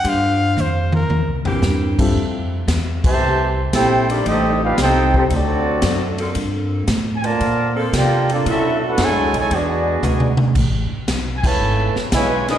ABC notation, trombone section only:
X:1
M:4/4
L:1/8
Q:"Swing" 1/4=114
K:F
V:1 name="Trombone section"
z8 | z3 [C,E,A,]2 z [CEG] D | [G,C_E] F [CEG] [CEG] [^F,A,D]3 z | z3 [D,F,B,]2 z [B,DG] [F,B,D] |
E [A,D^F] _A, A, [^G,=B,D]3 z | z3 [^C,E,A,]2 z [C,E,^G,] [E,G,^D] |]